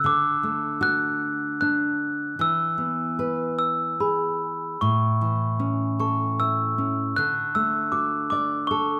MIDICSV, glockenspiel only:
0, 0, Header, 1, 2, 480
1, 0, Start_track
1, 0, Key_signature, 3, "major"
1, 0, Tempo, 778210
1, 31, Time_signature, 3, 2, 24, 8
1, 1472, Tempo, 798935
1, 3872, Tempo, 766284
1, 5511, End_track
2, 0, Start_track
2, 0, Title_t, "Glockenspiel"
2, 0, Program_c, 0, 9
2, 39, Note_on_c, 0, 86, 94
2, 488, Note_off_c, 0, 86, 0
2, 510, Note_on_c, 0, 90, 99
2, 985, Note_off_c, 0, 90, 0
2, 992, Note_on_c, 0, 90, 93
2, 1487, Note_off_c, 0, 90, 0
2, 1489, Note_on_c, 0, 88, 93
2, 2185, Note_off_c, 0, 88, 0
2, 2192, Note_on_c, 0, 88, 80
2, 2420, Note_off_c, 0, 88, 0
2, 2445, Note_on_c, 0, 83, 59
2, 2782, Note_off_c, 0, 83, 0
2, 2929, Note_on_c, 0, 85, 77
2, 3638, Note_off_c, 0, 85, 0
2, 3645, Note_on_c, 0, 85, 75
2, 3882, Note_on_c, 0, 88, 86
2, 3883, Note_off_c, 0, 85, 0
2, 4333, Note_off_c, 0, 88, 0
2, 4363, Note_on_c, 0, 90, 97
2, 4582, Note_off_c, 0, 90, 0
2, 4604, Note_on_c, 0, 88, 82
2, 4835, Note_on_c, 0, 86, 78
2, 4846, Note_off_c, 0, 88, 0
2, 5068, Note_off_c, 0, 86, 0
2, 5075, Note_on_c, 0, 86, 81
2, 5307, Note_on_c, 0, 85, 78
2, 5321, Note_off_c, 0, 86, 0
2, 5511, Note_off_c, 0, 85, 0
2, 5511, End_track
0, 0, End_of_file